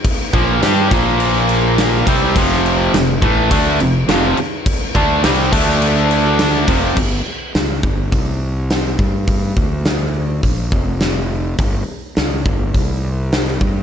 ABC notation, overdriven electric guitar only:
X:1
M:4/4
L:1/8
Q:1/4=104
K:Flyd
V:1 name="Overdriven electric guitar" clef=bass
z [_B,,F,_B,] [G,DG] [B,,F,B,]4 [C,G,C] | [F,,C,F,]2 [F,,C,] [A,,E,A,] [D,A,D] [F,,C,] [F,,C,F,] z | z [D,A,D] [C,G,C] [D,A,D]4 [F,,C,F,] | z8 |
z8 | z8 |]